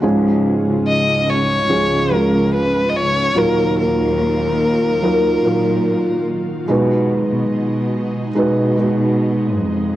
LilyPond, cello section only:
\new Staff \with { instrumentName = "Cello section" } { \clef bass \time 4/4 \key cis \mixolydian \tempo 4 = 72 cis,8. cis,16 cis,4 cis,4. cis,8 | dis,2~ dis,8 ais,4 r8 | b,8. b,16 b,4 b,4. eis,8 | }